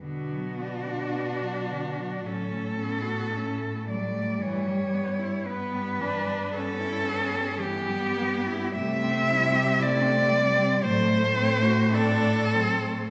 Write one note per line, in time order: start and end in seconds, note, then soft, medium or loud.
0.02 2.23 B2 medium
0.02 0.33 D3 medium
0.02 0.62 B3 medium
0.02 2.28 F#4 medium
0.31 0.61 F#3 medium
0.59 0.88 B3 soft
0.59 2.27 D4 medium
0.87 1.17 D4 medium
1.15 1.43 B3 medium
1.41 1.72 F#3 soft
1.70 1.99 D3 medium
1.97 2.24 F#3 medium
2.24 4.41 A2 medium
2.24 2.52 F#3 medium
2.24 2.81 C#4 medium
2.24 3.89 A4 medium
2.50 2.80 A3 medium
2.78 3.38 B3 medium
2.78 3.05 C#4 medium
3.04 3.34 F#4 medium
3.32 3.61 C#4 medium
3.36 3.94 A3 medium
3.59 3.88 A3 medium
3.87 4.14 F#3 medium
3.87 4.44 D5 medium
3.93 5.47 G3 medium
4.12 4.42 A3 medium
4.42 8.78 G2 medium
4.42 4.69 E3 medium
4.42 5.48 C#5 medium
4.67 4.96 G3 medium
4.95 5.21 B3 medium
5.19 5.47 E4 medium
5.46 5.74 B3 medium
5.46 6.03 B3 medium
5.46 6.54 B4 medium
5.72 6.00 G3 medium
5.99 6.27 E3 medium
5.99 6.58 D4 medium
6.26 6.49 G3 medium
6.50 6.82 B3 medium
6.55 7.64 C#4 medium
6.55 7.61 A4 loud
6.80 7.06 E4 medium
7.05 7.36 B3 medium
7.35 7.60 G3 medium
7.59 7.89 E3 medium
7.59 8.75 G4 loud
7.63 8.77 B3 medium
7.88 8.19 G3 medium
8.18 8.48 B3 medium
8.47 8.73 E4 medium
8.74 10.86 C3 medium
8.74 9.05 G3 medium
8.74 9.33 A3 medium
8.74 9.84 E5 loud
9.04 9.32 C4 medium
9.30 9.84 G3 medium
9.30 9.56 E4 medium
9.55 9.82 G4 medium
9.80 10.35 A3 loud
9.80 10.04 E4 medium
9.80 10.86 D5 loud
10.03 10.32 C4 medium
10.30 10.58 G3 medium
10.30 10.86 G3 medium
10.56 10.82 C4 medium
10.82 13.10 A2 loud
10.82 11.08 F#3 medium
10.82 11.95 A3 medium
10.82 11.96 C5 loud
11.07 11.38 A3 medium
11.37 11.66 C4 medium
11.64 11.94 F#4 medium
11.93 12.23 C4 medium
11.93 12.55 D4 loud
11.93 13.10 A4 loud
12.21 12.55 A3 medium
12.53 12.83 F#3 medium
12.53 13.10 C4 medium
12.81 13.10 A3 medium